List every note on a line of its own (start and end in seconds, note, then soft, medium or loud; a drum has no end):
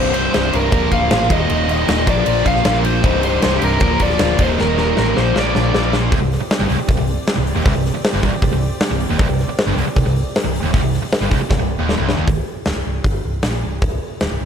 0.00 0.29 C1 medium
0.00 0.12 C2 loud
0.00 0.13 G2 loud
0.00 0.13 C3 loud
0.00 0.72 G3 loud
0.00 0.72 C4 medium
0.00 0.72 D#4 loud
0.00 0.72 G4 medium
0.00 0.13 C5 medium
0.00 0.72 D5 medium
0.13 0.31 C2 medium
0.13 0.32 G2 medium
0.13 0.32 C3 loud
0.13 0.32 C5 medium
0.13 ride medium
0.33 0.51 C1 medium
0.33 0.51 C2 medium
0.33 0.51 G2 medium
0.33 0.52 C3 loud
0.33 0.52 C5 medium
0.33 snare loud
0.33 ride loud
0.52 0.71 C1 medium
0.52 0.71 C2 medium
0.52 0.71 G2 medium
0.52 0.71 C3 medium
0.52 0.90 A#4 loud
0.52 ride medium
0.72 0.89 D1 medium
0.72 0.90 A#2 medium
0.72 0.91 F3 loud
0.72 0.91 A#3 loud
0.72 3.02 A#3 medium
0.72 1.30 D4 medium
0.72 1.30 F4 medium
0.72 1.30 F4 loud
0.72 1.30 A#4 loud
0.72 1.30 C5 medium
0.72 kick loud
0.72 ride loud
0.91 1.09 D1 medium
0.91 1.08 A#2 medium
0.91 1.09 F3 medium
0.91 1.09 A#3 loud
0.91 1.32 F5 loud
0.91 kick medium
0.91 ride medium
1.09 1.28 A1 medium
1.09 1.28 A#2 medium
1.09 1.29 F3 loud
1.09 1.29 A#3 loud
1.09 snare loud
1.09 ride loud
1.29 1.47 D#1 medium
1.29 1.48 D#2 medium
1.29 1.48 A#2 medium
1.29 1.49 D#3 loud
1.29 2.07 G3 loud
1.29 2.07 A#3 medium
1.29 2.07 D#4 medium
1.29 2.07 G4 medium
1.29 1.70 D#5 loud
1.29 kick loud
1.29 ride medium
1.49 1.84 D#1 loud
1.49 1.66 D#2 medium
1.49 1.67 A#2 loud
1.49 1.67 D#3 loud
1.49 ride loud
1.67 1.86 D#2 medium
1.67 1.87 A#2 medium
1.67 1.87 D#3 medium
1.67 1.89 D#5 medium
1.67 ride medium
1.87 2.05 D#1 medium
1.87 2.06 D#2 medium
1.87 2.05 A#2 loud
1.87 2.06 D#3 loud
1.87 2.09 D#5 loud
1.87 snare loud
1.87 ride loud
2.06 2.24 A#1 medium
2.06 2.25 A#2 medium
2.06 2.25 F3 loud
2.06 2.26 A#3 loud
2.06 3.03 D4 medium
2.06 3.03 F4 medium
2.06 3.03 F4 loud
2.06 3.03 A#4 loud
2.06 3.03 C5 medium
2.06 2.47 D5 medium
2.06 kick loud
2.06 ride medium
2.26 2.44 A#1 medium
2.26 2.44 A#2 loud
2.26 2.45 F3 loud
2.26 2.45 A#3 medium
2.26 ride loud
2.45 2.63 A#1 medium
2.45 2.63 A#2 loud
2.45 2.63 F3 loud
2.45 2.64 A#3 loud
2.45 2.79 F5 loud
2.45 kick medium
2.45 ride medium
2.56 snare soft
2.64 2.99 A#1 medium
2.64 2.83 A#2 loud
2.64 2.83 F3 loud
2.64 2.84 A#3 loud
2.64 snare loud
2.64 ride loud
2.78 2.85 A#4 medium
2.84 3.02 A#2 medium
2.84 3.03 F3 medium
2.84 3.03 A#3 medium
2.84 3.23 C5 loud
2.84 ride medium
3.02 3.38 C1 loud
3.02 3.21 C2 loud
3.02 3.21 G2 loud
3.02 3.22 C3 loud
3.02 3.80 G3 loud
3.02 3.80 C4 medium
3.02 3.81 D#4 loud
3.02 3.80 G4 medium
3.02 3.80 D5 medium
3.02 kick loud
3.02 ride medium
3.22 3.41 C2 medium
3.22 3.41 G2 medium
3.22 3.42 C3 loud
3.22 3.44 C5 medium
3.22 ride medium
3.42 3.60 C1 loud
3.42 3.60 C2 loud
3.42 3.61 G2 medium
3.42 3.61 C3 loud
3.42 3.56 C5 medium
3.42 snare loud
3.42 ride loud
3.56 3.63 G4 medium
3.61 3.79 C1 medium
3.61 3.80 C2 medium
3.61 3.80 G2 medium
3.61 3.80 C3 loud
3.61 4.02 A#4 medium
3.61 ride medium
3.80 3.98 D1 loud
3.80 3.99 A#2 medium
3.80 3.99 F3 loud
3.80 6.09 A#3 medium
3.80 4.00 A#3 loud
3.80 4.38 D4 loud
3.80 4.38 F4 medium
3.80 4.39 F4 loud
3.80 4.39 A#4 loud
3.80 4.38 C5 medium
3.80 kick loud
3.80 ride loud
3.99 4.17 D1 medium
3.99 4.18 A#2 loud
3.99 4.18 F3 loud
3.99 4.19 A#3 loud
3.99 4.41 D5 medium
3.99 kick medium
3.99 ride medium
4.10 snare soft
4.19 4.37 D1 loud
4.19 4.37 A#2 medium
4.19 4.37 F3 medium
4.19 4.38 A#3 loud
4.19 snare loud
4.19 ride loud
4.39 4.56 D#1 medium
4.39 4.56 D#2 medium
4.39 4.57 A#2 loud
4.39 4.57 D#3 medium
4.39 5.15 G3 loud
4.39 5.15 A#3 loud
4.39 5.16 D#4 medium
4.39 5.16 D#4 loud
4.39 5.16 G4 medium
4.39 4.47 C5 medium
4.39 kick loud
4.39 ride medium
4.57 4.93 D#1 medium
4.57 4.76 D#2 medium
4.57 4.76 A#2 loud
4.57 4.77 D#3 loud
4.57 4.79 A#4 medium
4.57 snare medium
4.77 4.96 D#2 medium
4.77 4.96 A#2 medium
4.77 4.96 D#3 loud
4.77 snare medium
4.81 5.18 A#4 medium
4.97 5.14 A1 loud
4.97 5.15 D#2 medium
4.97 5.14 A#2 medium
4.97 5.15 D#3 loud
4.97 snare medium
5.15 5.33 A#1 medium
5.15 5.33 A#2 medium
5.15 5.33 F3 loud
5.15 5.34 A#3 loud
5.15 6.11 D4 medium
5.15 6.11 F4 medium
5.15 6.11 F4 loud
5.15 6.11 A#4 loud
5.15 6.11 C5 medium
5.15 5.38 C5 medium
5.15 snare medium
5.34 5.52 A#1 medium
5.34 5.53 A#2 loud
5.34 5.53 F3 medium
5.34 5.54 A#3 loud
5.34 snare medium
5.38 5.94 D5 medium
5.54 5.72 A#1 medium
5.54 5.72 A#2 medium
5.54 5.73 F3 medium
5.54 5.73 A#3 loud
5.54 snare medium
5.74 6.08 A#1 medium
5.74 5.92 A#2 medium
5.74 5.93 F3 loud
5.74 5.94 A#3 medium
5.74 snare loud
5.93 6.11 A#2 medium
5.93 6.11 F3 medium
5.93 6.12 A#3 medium
5.93 snare medium
6.12 6.21 C1 medium
6.12 6.21 C2 loud
6.12 12.24 C4 medium
6.12 12.24 G4 medium
6.12 12.24 D5 medium
6.12 kick loud
6.12 open hi-hat medium
6.22 6.39 C1 medium
6.22 6.37 C2 medium
6.32 snare soft
6.32 open hi-hat medium
6.40 muted distorted electric guitar stroke medium
6.40 muted overdriven electric guitar stroke medium
6.51 snare loud
6.51 open hi-hat medium
6.60 6.69 G1 medium
6.60 6.68 G2 loud
6.69 6.79 C1 medium
6.69 6.78 C2 loud
6.69 open hi-hat medium
6.78 muted distorted electric guitar stroke medium
6.78 muted overdriven electric guitar stroke medium
6.88 6.97 C1 medium
6.88 6.97 C2 medium
6.88 kick loud
6.88 open hi-hat medium
6.98 7.17 C1 medium
6.98 7.14 C2 medium
7.07 open hi-hat medium
7.27 snare loud
7.27 open hi-hat medium
7.36 7.55 C1 medium
7.36 7.52 C2 medium
7.47 open hi-hat medium
7.56 7.65 D#1 medium
7.56 7.65 D#2 loud
7.65 7.74 C1 loud
7.65 7.74 C2 loud
7.65 kick loud
7.65 open hi-hat medium
7.75 7.93 C1 medium
7.75 7.90 C2 medium
7.86 snare soft
7.86 open hi-hat medium
7.94 muted distorted electric guitar stroke medium
7.94 muted overdriven electric guitar stroke medium
7.94 muted fingered electric bass stroke soft
8.04 snare loud
8.04 open hi-hat medium
8.14 8.23 G1 medium
8.14 8.23 G2 loud
8.23 8.32 C1 medium
8.23 8.32 C2 loud
8.23 kick medium
8.23 open hi-hat medium
8.33 muted distorted electric guitar stroke medium
8.33 muted fingered electric bass stroke soft
8.33 muted overdriven electric guitar stroke medium
8.42 8.51 C1 medium
8.42 8.52 C2 medium
8.42 kick loud
8.42 open hi-hat medium
8.52 8.70 C1 medium
8.52 8.68 C2 medium
8.61 open hi-hat medium
8.80 snare loud
8.80 open hi-hat medium
8.90 9.08 C1 medium
8.90 9.06 C2 medium
9.00 open hi-hat medium
9.10 9.18 D#1 medium
9.10 9.19 D#2 loud
9.19 9.28 C1 loud
9.19 9.28 C2 loud
9.19 kick loud
9.19 open hi-hat medium
9.28 9.46 C1 medium
9.28 9.44 C2 medium
9.39 snare soft
9.39 open hi-hat medium
9.48 muted fingered electric bass stroke soft
9.48 muted distorted electric guitar stroke medium
9.48 muted overdriven electric guitar stroke medium
9.58 snare loud
9.58 open hi-hat medium
9.66 9.76 G1 medium
9.66 9.77 G2 loud
9.77 9.86 C1 medium
9.77 9.86 C2 loud
9.77 open hi-hat medium
9.87 muted distorted electric guitar stroke medium
9.87 muted overdriven electric guitar stroke medium
9.96 10.05 C1 medium
9.96 10.04 C2 medium
9.96 kick loud
9.96 open hi-hat medium
10.05 10.23 C1 medium
10.05 10.21 C2 medium
10.16 open hi-hat medium
10.36 snare loud
10.36 open hi-hat medium
10.44 10.62 C1 medium
10.44 10.59 C2 medium
10.56 open hi-hat medium
10.63 10.72 D#1 medium
10.63 10.73 D#2 loud
10.73 10.82 C1 loud
10.73 10.82 C2 loud
10.73 kick loud
10.73 open hi-hat medium
10.83 11.01 C1 medium
10.83 10.99 C2 medium
10.93 snare soft
10.93 open hi-hat medium
11.02 muted overdriven electric guitar stroke medium
11.02 muted distorted electric guitar stroke medium
11.12 snare loud
11.12 open hi-hat medium
11.21 11.30 G1 medium
11.21 11.30 G2 loud
11.31 11.40 C1 medium
11.31 11.39 C2 medium
11.31 kick medium
11.31 open hi-hat medium
11.40 muted overdriven electric guitar stroke medium
11.40 muted distorted electric guitar stroke medium
11.50 11.60 C1 medium
11.50 11.58 C2 medium
11.50 kick loud
11.50 snare medium
11.59 11.78 C1 medium
11.59 11.75 C2 medium
11.79 11.97 D#1 medium
11.79 11.97 D#2 loud
11.89 snare medium
11.97 12.17 C1 medium
11.97 12.16 C2 medium
12.09 snare medium
12.16 12.27 D#1 medium
12.16 12.26 D#2 loud
12.27 12.36 C1 medium
12.27 kick loud
12.27 open hi-hat medium
12.37 12.46 C1 medium
12.65 12.75 D1 medium
12.65 snare loud
12.65 open hi-hat soft
12.76 12.85 C1 medium
12.87 13.04 C1 medium
13.04 13.23 G1 medium
13.04 kick medium
13.04 open hi-hat soft
13.25 13.43 C1 medium
13.43 13.62 A#1 medium
13.43 snare loud
13.43 open hi-hat medium
13.64 13.81 C1 medium
13.82 13.91 C1 medium
13.82 kick loud
13.82 open hi-hat medium
13.93 14.02 C1 medium
14.03 muted fingered electric bass stroke soft
14.21 14.30 D1 medium
14.21 snare loud
14.21 open hi-hat medium
14.31 14.40 C1 medium
14.41 14.45 C1 medium